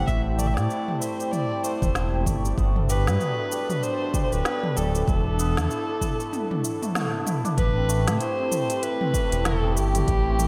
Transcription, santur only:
Already playing: G3 A3 C4
0.08 E4
0.26 C4
0.39 A3
0.57 G3
0.70 E4
0.89 C4
1.02 A3
1.20 G3
1.33 E4
1.51 C4
1.64 A3
1.83 G3
1.96 E4
2.14 C4
2.26 A3
2.45 G3
2.58 B3
2.76 A3
2.89 G3
3.07 F#3
3.20 B3
3.39 A3
3.52 G3
3.70 F#3
3.83 B3
4.01 A3
4.14 G3
4.32 F#3
4.45 B3
4.63 A3
4.76 G3
4.95 F#3
5.08 E4
5.26 D4
5.39 B3
5.57 A3
5.70 E4
5.89 D4
6.02 B3
6.20 A3
6.33 E4
6.51 D4
6.64 E4
6.82 A3
6.95 A4
7.14 B3
7.26 E4
7.45 D4
7.76 C4
7.89 A3
8.08 G3
8.20 E4
8.39 C4
8.51 A3
8.70 G3
8.83 E4
9.01 C4
9.14 A3
9.32 G3
9.45 E4
9.63 C4
9.77 A3
9.95 G3
10.08 E4
10.26 C4
10.39 A3

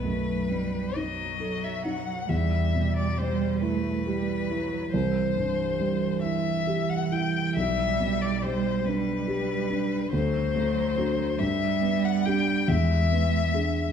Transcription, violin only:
Already playing: B4
0.96 D#5
1.64 E5
1.86 F#5
2.29 E5
2.96 D5
3.18 C5
3.61 B4
4.93 C5
6.23 E5
6.90 F#5
7.12 G5
7.56 E5
8.22 D5
8.42 C5
8.85 B4
10.13 C5
11.39 E5
12.05 F#5
12.25 G5
12.68 E5

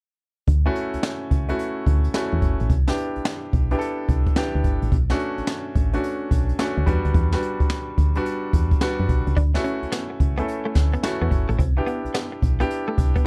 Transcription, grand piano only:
0.66 A3 C#4 E4 F#4
1.49 A3 C#4 E4 F#4
2.14 A3 C#4 E4 F#4
2.87 B3 D4 E4 G4
3.71 B3 D4 E4 G4
3.79 A4
4.36 B3 D4 E4 G4
5.10 A3 C#4 D4 F#4
5.93 A3 C#4 D4 F#4
6.59 A3 C#4 D4 F#4
6.86 G3 B3 D4 F#4
7.33 G3 B3 D4 F#4
8.16 G3 B3 D4 F#4
8.81 G3 B3 D4 F#4
9.54 A3 C#4 E4 F#4
10.38 A3 C#4 E4 A4
11.03 A3 C#4 E4 F#4
11.77 B3 D4 E4 G4
12.60 B3 D4 E4 G4

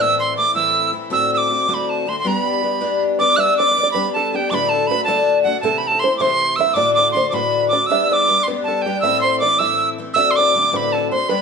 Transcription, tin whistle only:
0.01 E6
0.19 C6
0.37 D6
0.55 E6
1.12 E6
1.34 D6 E6
1.69 D6
1.74 B5
1.89 A5
2.09 C6
2.19 C6
2.27 B5
3.19 D6
3.36 E6 F#6
3.57 D6
3.92 B5
4.13 A5
4.31 A5
4.35 G5
4.50 D6
4.54 B5
4.69 A5
4.87 B5
5.04 A5
5.43 F#5
5.60 A5
5.78 B5
5.87 A5
5.99 C6
6.17 D6
6.21 C6
6.56 E6
6.74 D6
6.94 D6
7.12 C6
7.30 D6
7.34 B5
7.68 D6
7.86 E6
8.04 E6
8.08 E6
8.13 D6
8.43 C6
8.64 A5
8.82 G5
9.01 E6
9.21 C6
9.40 D6
9.59 E6
10.14 E6
10.31 C6
10.36 D6
10.72 D6
10.76 B5
10.92 A5
11.11 C6
11.29 B5

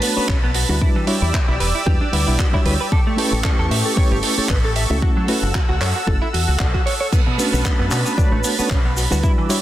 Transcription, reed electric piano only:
Already playing: A3 D4 F#4 B4 C#5
0.16 A3 C#4 D4 F#4 C#5
0.69 G3 D4 E4 F#4 B4
1.07 G3 D4 E4 F#4 C#5
1.86 G3 D4 E4 F#4 B4
2.12 G3 D4 E4 B4 F#5
2.53 G3 D4 E4 F#4 C#5
3.16 A3 C#4 E4 G4 B4
3.96 A3 C#4 E4 G4 B4
4.37 A3 C#4 E4 G4 C#5
4.90 A3 C#4 E4 F#4 A4
5.28 A3 C#4 E4 F#4 B4
6.07 A3 C#4 E4 F#4 A4
7.38 A3 C#4 D4 F#4 B4
8.17 A3 D4 F#4 B4 C#5
8.59 A3 C#4 D4 F#4 C#5
9.11 G3 D4 E4 F#4 B4
9.49 G3 D4 E4 F#4 C#5

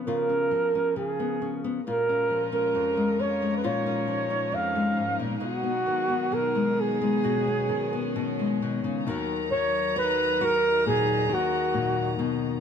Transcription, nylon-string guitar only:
Already playing: F3 B3 C#4
0.07 C#3 F4
0.29 C#4
0.51 F3
0.75 C#4
0.96 C#3
1.20 B3
1.42 C#4
1.64 B3
1.87 A#2 F4
2.09 C#4
2.30 F3
2.52 C#4
2.75 F2
2.97 G#3
3.20 C#4
3.42 G#3
3.64 A#2 F4
3.86 C#4
4.08 F3
4.30 C#4
4.52 F2
4.76 G#3
4.97 G#2
5.19 A#2
5.40 B2 B3
5.63 B3
5.86 D#3
6.10 B3
6.32 B2
6.55 G#3
6.77 B3
7.02 G#3
7.24 B2 F#4
7.47 B3
7.69 D#3
7.93 B3
8.16 B2
8.39 G#3
8.62 B2
8.84 C#3
9.07 D#2 D#3 F#4
9.52 D#3
9.96 F#4
10.41 F#4
10.86 A#2
11.29 D#3
11.74 A#2
12.19 B2

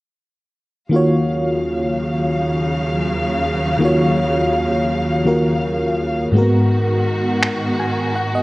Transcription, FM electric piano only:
0.89 D#3 A#3 F4
0.94 F#4 C#5
3.78 D#3 A#3 F4
3.83 F#4 C#5
5.25 D#3 A#3 F4 F#4 A#4
6.32 G#2 G#3 A#3
6.36 F#4 A#4
6.41 B3
7.79 G#5
8.15 F#5
8.35 D#5

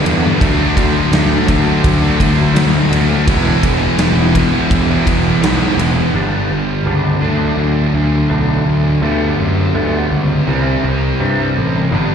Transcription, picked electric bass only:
0.04 E2
0.41 D2
0.76 D2
1.12 D2
1.48 D2
1.84 D2
2.20 D2
2.54 D2
2.91 D2
3.27 E1
3.63 E1
3.98 E1
4.70 E1
5.07 E1
5.41 B1
5.77 E1
6.13 G1
6.51 G1
6.86 C#2
7.22 D2
7.58 D2
7.94 D2
8.30 B1
8.65 D2
9.02 D2
9.40 F#2
9.75 D2
10.11 C#2
10.48 C2
10.84 C2
11.21 G2
11.57 A1
11.92 G1

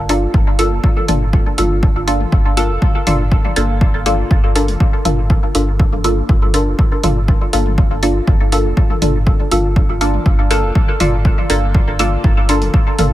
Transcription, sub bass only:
Already playing: G1
0.34 G1
0.72 F1
1.08 G1
1.58 G1
1.96 G1
2.32 G1
2.70 F1
3.07 G1
3.56 G1
3.94 G1
4.31 G1
4.68 F1
5.05 G1
5.55 G1
5.92 G1
6.29 G1
6.67 F1
7.04 G1
7.53 G1
7.91 G1
8.27 G1
8.65 F1
9.02 G1
9.51 G1
9.89 G1
10.26 G1
10.63 F1
11.00 G1
11.50 G1
11.87 G1
12.24 G1
12.62 F1
12.99 G1

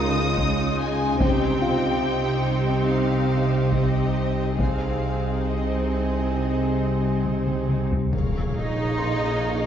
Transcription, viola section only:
Already playing: G#3 D#4
1.21 C4 D#4
4.60 C4 D#4
8.12 G#4 A#4

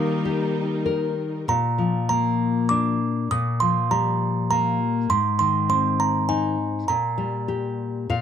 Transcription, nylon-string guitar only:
Already playing: D#3 A#3
0.25 G4
0.86 A#4
1.48 A#2
1.78 F3
2.10 A#3
2.71 D4
3.31 A#2
3.62 F3
3.91 G3
4.51 A#3
5.10 G#2
5.40 D#3
5.69 C4
6.29 D#4
6.89 A#2
7.18 G3
7.48 G4
8.10 A#2 F5

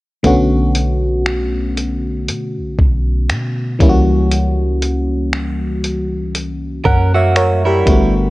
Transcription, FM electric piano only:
0.23 D3 A3 B3 C#4 F#4
3.79 E3 G3 A#3 C#4 E4
3.89 F#4
6.86 F#5
7.15 C#5 E5
7.36 A#4 C#5
7.66 G4 A#4
7.86 D3 G3 A3 B3 F#4

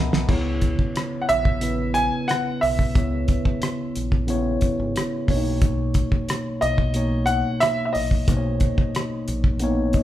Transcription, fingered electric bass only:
Already playing: C#2
0.13 B1
0.29 C#2
1.29 A#1
2.63 B1
2.96 C#2
3.97 A#1
4.79 G#1
5.29 B1
6.63 B1
7.96 A#1
8.29 B1
9.28 A#1

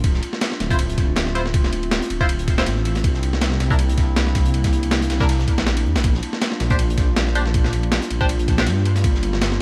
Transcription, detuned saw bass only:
0.04 D1
0.60 D1
0.98 D1
2.10 D1
2.66 A1
3.04 C2
3.60 C2
3.98 C2
5.10 C2
5.58 A#1
5.85 E2
5.95 A#1
6.04 A#1
6.60 A#1
6.98 A#1
8.11 A#1
8.67 G2
9.04 G1

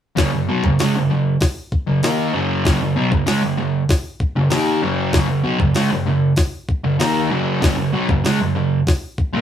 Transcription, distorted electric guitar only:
0.16 F#2 C#3
0.33 F#2 C#3
0.49 B2 F#3
0.65 F#2 C#3
0.80 C#3 G#3
0.95 F#2 C#3
1.10 F#2 C#3
1.87 F#2 C#3
2.03 D#3 A#3 D#4
2.33 F#2 C#3 F#3
2.65 F#2 C#3
2.82 F#2 C#3
2.96 B2 F#3
3.11 F#2 C#3
3.26 C#3 G#3
3.42 F#2 C#3
3.57 F#2 C#3
4.36 F#2 C#3
4.50 D#3 A#3 D#4
4.82 F#2 C#3 F#3
5.13 F#2 C#3
5.28 F#2 C#3
5.44 B2 F#3
5.59 F#2 C#3
5.74 C#3 G#3
5.91 F#2 C#3
6.06 F#2 C#3
6.84 F#2 C#3
6.99 D#3 A#3 D#4
7.30 F#2 C#3 F#3
7.61 F#2 C#3
7.77 F#2 C#3
7.93 B2 F#3
8.10 F#2 C#3
8.25 C#3 G#3
8.41 F#2 C#3
8.56 F#2 C#3
9.33 A#2 F3 A#3

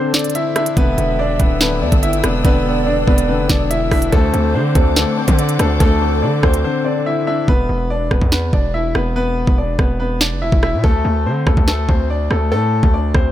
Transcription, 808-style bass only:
0.77 E1
0.98 E1
1.40 D1
1.82 E2
1.92 G1
2.24 E1
2.45 E1
3.08 E1
3.39 F#1
3.50 E1
3.91 E1
4.12 D2
4.33 D2
4.54 D3
4.75 D2
5.28 D3
5.59 D2
5.80 D2
6.22 D3
6.43 D2
7.48 E1
7.69 E1
8.11 D1
8.22 E2
8.53 E1
8.95 E1
9.47 E1
9.79 E1
10.31 F#1
10.42 E1
10.52 E1
10.73 B2
10.84 D2
11.05 D2
11.26 D3
11.47 D2
11.57 D2
11.89 D2
12.31 D2
12.52 A2
12.83 D2
13.14 D2

